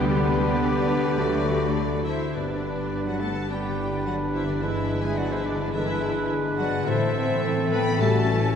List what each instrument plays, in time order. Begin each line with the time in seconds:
Already playing: harp D3 B3 G4, french horn section D3, cello section D3, trombone section G3 B3, viola section G3 B3, violin section G4 D5, flute G4, oboe B4
0.00 double bass section D2, bassoon B3, violin section D4, clarinet G4
0.27 harp D4
0.57 harp G4
0.87 harp B4
1.17 harp D3, viola section F#3 A3, trombone section F#3 A3, bassoon A3, clarinet F#4, violin section A4
1.46 harp D4
1.76 harp F#4
2.06 cello section E3, viola section E4, harp A4, flute C5, violin section E5
2.35 double bass section G1, harp G2, cello section D3, trombone section D3 B3, bassoon G3, violin section B3 D4 D5, clarinet D4, viola section D4, flute B4, oboe B4
2.54 harp B3
2.73 harp D4
2.92 harp G4
3.06 cello section F#3, viola section F#4, flute D5, violin section F#5
3.11 harp D4
3.20 cello section A3, viola section A4, flute F#5, violin section A5
3.30 harp D3
3.48 trombone section D3 B3, cello section G3, bassoon G3, harp B3, clarinet D4, french horn section D4, viola section G4, oboe B4, flute D5, violin section G5
3.67 harp D3
3.79 french horn section E4
3.86 harp D4
4.05 cello section F#3, french horn section D4, viola section F#4, harp G4, flute D5, violin section F#5
4.24 harp D4
4.34 cello section E3, viola section E4, flute C5, violin section E5
4.42 harp D3
4.47 cello section D3, viola section D4, flute B4, violin section D5
4.61 harp G2, trombone section D3 G#3, cello section E3, violin section G#3 E5, bassoon G#3, clarinet D4, viola section E4, french horn section E4, flute B4, oboe B4
4.80 harp B3
4.99 cello section G#3, harp D4
5.04 viola section G#4, flute E5, violin section G#5
5.17 cello section F#3, viola section F#4, harp G#4, flute D5, violin section F#5
5.32 cello section E3, viola section E4, flute C5, violin section E5
5.46 cello section D3, viola section D4, flute B4, violin section D5
5.55 harp D3
5.72 harp G2, trombone section D3 G#3, cello section E3, bassoon G#3, clarinet D4, viola section E4, oboe B4, flute B4, french horn section B4, violin section E5
5.94 harp B3
6.03 french horn section G#4
6.13 harp D4
6.30 harp G#4, french horn section B4
6.50 harp D4
6.58 cello section F#3, viola section F#4, flute D5, violin section F#5
6.68 harp D3
6.86 double bass section A1, harp A2, trombone section C3 A3, cello section E3, bassoon A3, violin section A3 C4 E5, clarinet C4, viola section E4, oboe A4, french horn section C5, flute C5
7.06 harp A3
7.25 harp C4
7.43 french horn section A4, harp A4
7.61 harp C4
7.70 cello section B3, viola section B4, flute G5, violin section B5
7.80 harp E3
7.99 harp A2, trombone section C#3 G3, bassoon G3, cello section A3, clarinet C#4, violin section C#4 A5, french horn section F#4, viola section A4, oboe A4, flute E5
8.18 harp A3
8.29 french horn section E4
8.37 harp C#4